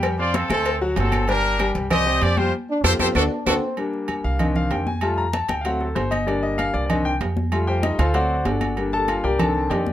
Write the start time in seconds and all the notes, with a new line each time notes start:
Already playing: F2 G3 G4 G5
0.03 cowbell, high conga, low agogo, claves
0.19 C4 F4 C5 D5 F5, high conga
0.34 C4 A4, cowbell, high conga, low timbale, low agogo
0.50 D2 A3 C4 A4 C5, cowbell, high conga, low agogo, claves
0.65 cowbell, high conga, low agogo
0.81 F#3 F#4 F#5, high conga
0.96 G1 F#3 C4 F#4 A4 F#5, cowbell, high conga, low timbale, low agogo
1.12 cowbell, high conga, low agogo, claves
1.28 G3 D4 G4 A#4 G5, cowbell, high conga, low agogo
1.44 high conga
1.59 G3 G4 G5, cowbell, high conga, low timbale, low agogo, claves
1.75 C2, cowbell, high conga
1.90 C4 G4 C5 D5 D#5, cowbell, high conga, low conga, low agogo, claves
2.06 C4 C5 D5
2.22 F2 G4 D5, cowbell, high conga, low timbale, low agogo
2.37 G3 F4 G4 C5 G5, high conga
2.69 D4
2.84 F2 C4 F4 G4 A4 C5, cowbell, high conga, high timbale, claves
2.99 F2 C4 F4 G4 A4 C5, cowbell, high conga, high timbale, claves
3.15 D2 D4 F#4 A4, cowbell, high conga, high timbale, claves
3.31 D4
3.46 D2 C4 D4 F#4 A4, cowbell, high conga, high timbale, claves
3.77 G3 A#3 D4, high conga, low agogo
3.93 high conga
4.08 high conga, low timbale, low agogo
4.24 C2 F5, high conga
4.39 D#3 C4 D4 D#5, high conga, low conga, low agogo
4.56 F5, high conga, low conga
4.71 F2 G5, high conga, low timbale, low agogo
4.86 G#5, high conga
5.01 G3 A3 F4 A5, high conga, low agogo
5.18 A#5, high conga
5.33 A5, high conga, low timbale, low agogo
5.49 D2 G5, high conga, low agogo
5.61 F#3 F5, high conga, low agogo
5.66 A3 C4 F#5
5.81 A4, high conga
5.95 G1 C5, high conga, low timbale, low agogo
6.11 D#5, high conga, low agogo
6.26 G3 A#3 D4 D5, high conga, low agogo
6.43 D#5, high conga
6.58 F5, high conga, low timbale, low agogo
6.74 C2 D5, high conga
6.86 D#3 D5
6.90 C4 D4 D#5, high conga, low conga, low agogo
7.05 G5, high conga
7.21 F2, high conga, low timbale, low agogo
7.37 high conga
7.52 G3 A3 F4, high conga, low agogo
7.67 G4 C5 G5, high conga
7.83 D#4 D#5, high conga, low timbale, low agogo
7.99 D2 F4 A4 C5 F5, high conga, low agogo
8.14 F#3 A3 C4 F#4 C5 D5 F#5, high conga, low agogo
8.30 high conga
8.45 G1 D4 F#4 A4 D5, high conga, low timbale, low agogo
8.61 high conga, low agogo
8.77 G3 A#3 D4, high conga, low agogo
8.92 A4 A5, high conga
9.08 F4 F5, high conga, low timbale, low agogo
9.24 C2 G4 A#4 D5 G5, high conga
9.39 D#3 C4 D4 A4 A5, high conga, low conga, low agogo
9.55 high conga
9.70 F2 G4 D5 D#5 G5, high conga, low timbale, low agogo
9.86 high conga